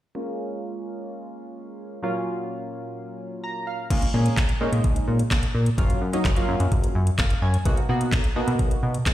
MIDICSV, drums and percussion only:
0, 0, Header, 1, 2, 480
1, 0, Start_track
1, 0, Key_signature, -5, "minor"
1, 0, Tempo, 468750
1, 159, Time_signature, 4, 2, 24, 8
1, 9355, End_track
2, 0, Start_track
2, 0, Title_t, "Drums"
2, 3998, Note_on_c, 9, 36, 113
2, 3999, Note_on_c, 9, 42, 79
2, 3999, Note_on_c, 9, 49, 98
2, 4101, Note_off_c, 9, 36, 0
2, 4101, Note_off_c, 9, 42, 0
2, 4101, Note_off_c, 9, 49, 0
2, 4119, Note_on_c, 9, 42, 49
2, 4221, Note_off_c, 9, 42, 0
2, 4359, Note_on_c, 9, 42, 64
2, 4462, Note_off_c, 9, 42, 0
2, 4478, Note_on_c, 9, 39, 101
2, 4479, Note_on_c, 9, 36, 120
2, 4479, Note_on_c, 9, 42, 77
2, 4484, Note_on_c, 9, 38, 80
2, 4581, Note_off_c, 9, 36, 0
2, 4581, Note_off_c, 9, 39, 0
2, 4582, Note_off_c, 9, 42, 0
2, 4586, Note_off_c, 9, 38, 0
2, 4597, Note_on_c, 9, 42, 50
2, 4700, Note_off_c, 9, 42, 0
2, 4840, Note_on_c, 9, 42, 55
2, 4942, Note_off_c, 9, 42, 0
2, 4957, Note_on_c, 9, 42, 66
2, 4959, Note_on_c, 9, 36, 115
2, 5060, Note_off_c, 9, 42, 0
2, 5062, Note_off_c, 9, 36, 0
2, 5080, Note_on_c, 9, 42, 54
2, 5182, Note_off_c, 9, 42, 0
2, 5318, Note_on_c, 9, 42, 55
2, 5421, Note_off_c, 9, 42, 0
2, 5437, Note_on_c, 9, 36, 104
2, 5439, Note_on_c, 9, 39, 104
2, 5439, Note_on_c, 9, 42, 75
2, 5444, Note_on_c, 9, 38, 80
2, 5540, Note_off_c, 9, 36, 0
2, 5541, Note_off_c, 9, 39, 0
2, 5541, Note_off_c, 9, 42, 0
2, 5547, Note_off_c, 9, 38, 0
2, 5558, Note_on_c, 9, 42, 50
2, 5661, Note_off_c, 9, 42, 0
2, 5799, Note_on_c, 9, 42, 49
2, 5902, Note_off_c, 9, 42, 0
2, 5919, Note_on_c, 9, 36, 113
2, 5920, Note_on_c, 9, 42, 79
2, 6021, Note_off_c, 9, 36, 0
2, 6022, Note_off_c, 9, 42, 0
2, 6040, Note_on_c, 9, 42, 51
2, 6143, Note_off_c, 9, 42, 0
2, 6281, Note_on_c, 9, 42, 63
2, 6384, Note_off_c, 9, 42, 0
2, 6399, Note_on_c, 9, 36, 122
2, 6399, Note_on_c, 9, 39, 108
2, 6400, Note_on_c, 9, 42, 74
2, 6404, Note_on_c, 9, 38, 82
2, 6501, Note_off_c, 9, 39, 0
2, 6502, Note_off_c, 9, 36, 0
2, 6502, Note_off_c, 9, 42, 0
2, 6507, Note_off_c, 9, 38, 0
2, 6517, Note_on_c, 9, 42, 51
2, 6620, Note_off_c, 9, 42, 0
2, 6759, Note_on_c, 9, 42, 51
2, 6861, Note_off_c, 9, 42, 0
2, 6878, Note_on_c, 9, 42, 62
2, 6880, Note_on_c, 9, 36, 108
2, 6980, Note_off_c, 9, 42, 0
2, 6982, Note_off_c, 9, 36, 0
2, 7000, Note_on_c, 9, 42, 56
2, 7103, Note_off_c, 9, 42, 0
2, 7238, Note_on_c, 9, 42, 58
2, 7341, Note_off_c, 9, 42, 0
2, 7358, Note_on_c, 9, 36, 109
2, 7359, Note_on_c, 9, 39, 103
2, 7359, Note_on_c, 9, 42, 74
2, 7365, Note_on_c, 9, 38, 86
2, 7460, Note_off_c, 9, 36, 0
2, 7461, Note_off_c, 9, 42, 0
2, 7462, Note_off_c, 9, 39, 0
2, 7467, Note_off_c, 9, 38, 0
2, 7478, Note_on_c, 9, 42, 51
2, 7581, Note_off_c, 9, 42, 0
2, 7719, Note_on_c, 9, 42, 48
2, 7821, Note_off_c, 9, 42, 0
2, 7838, Note_on_c, 9, 42, 81
2, 7839, Note_on_c, 9, 36, 114
2, 7941, Note_off_c, 9, 42, 0
2, 7942, Note_off_c, 9, 36, 0
2, 7959, Note_on_c, 9, 42, 50
2, 8062, Note_off_c, 9, 42, 0
2, 8200, Note_on_c, 9, 42, 65
2, 8303, Note_off_c, 9, 42, 0
2, 8319, Note_on_c, 9, 39, 109
2, 8320, Note_on_c, 9, 36, 118
2, 8320, Note_on_c, 9, 42, 76
2, 8324, Note_on_c, 9, 38, 83
2, 8421, Note_off_c, 9, 39, 0
2, 8422, Note_off_c, 9, 36, 0
2, 8422, Note_off_c, 9, 42, 0
2, 8426, Note_off_c, 9, 38, 0
2, 8438, Note_on_c, 9, 42, 52
2, 8540, Note_off_c, 9, 42, 0
2, 8680, Note_on_c, 9, 42, 54
2, 8782, Note_off_c, 9, 42, 0
2, 8799, Note_on_c, 9, 42, 66
2, 8800, Note_on_c, 9, 36, 104
2, 8901, Note_off_c, 9, 42, 0
2, 8903, Note_off_c, 9, 36, 0
2, 8921, Note_on_c, 9, 42, 54
2, 9023, Note_off_c, 9, 42, 0
2, 9159, Note_on_c, 9, 42, 57
2, 9261, Note_off_c, 9, 42, 0
2, 9278, Note_on_c, 9, 36, 105
2, 9280, Note_on_c, 9, 39, 106
2, 9280, Note_on_c, 9, 42, 76
2, 9286, Note_on_c, 9, 38, 85
2, 9355, Note_off_c, 9, 36, 0
2, 9355, Note_off_c, 9, 38, 0
2, 9355, Note_off_c, 9, 39, 0
2, 9355, Note_off_c, 9, 42, 0
2, 9355, End_track
0, 0, End_of_file